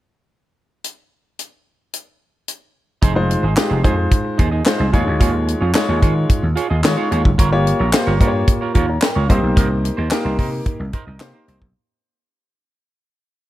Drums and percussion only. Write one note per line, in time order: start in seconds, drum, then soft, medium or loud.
0.84 closed hi-hat medium
1.39 closed hi-hat medium
1.94 closed hi-hat medium
2.48 closed hi-hat medium
3.03 kick loud
3.03 closed hi-hat medium
3.31 closed hi-hat medium
3.57 snare loud
3.57 clap medium
3.57 closed hi-hat medium
3.84 kick medium
3.84 closed hi-hat medium
4.12 kick loud
4.12 closed hi-hat medium
4.39 kick medium
4.39 closed hi-hat medium
4.66 snare loud
4.66 clap medium
4.66 closed hi-hat medium
4.94 kick medium
4.94 closed hi-hat medium
5.21 kick loud
5.21 closed hi-hat medium
5.48 closed hi-hat medium
5.75 snare loud
5.75 clap medium
5.75 closed hi-hat medium
6.02 kick medium
6.02 closed hi-hat medium
6.30 kick loud
6.30 closed hi-hat medium
6.57 closed hi-hat medium
6.84 snare loud
6.84 clap medium
6.84 closed hi-hat medium
7.12 closed hi-hat medium
7.25 kick medium
7.39 kick loud
7.39 closed hi-hat loud
7.67 closed hi-hat medium
7.93 snare loud
7.93 clap medium
7.93 closed hi-hat medium
8.21 kick medium
8.21 closed hi-hat medium
8.48 kick loud
8.48 closed hi-hat loud
8.75 kick medium
8.75 closed hi-hat medium
9.02 snare loud
9.02 clap medium
9.02 closed hi-hat medium
9.30 kick medium
9.30 closed hi-hat medium
9.57 kick loud
9.57 closed hi-hat medium
9.85 closed hi-hat medium
10.11 snare loud
10.11 clap medium
10.11 closed hi-hat medium
10.39 kick medium
10.39 open hi-hat medium
10.66 kick loud
10.66 closed hi-hat medium
10.93 kick medium
10.93 closed hi-hat medium
11.20 snare loud
11.20 clap medium
11.20 closed hi-hat medium
11.48 closed hi-hat medium
11.62 kick medium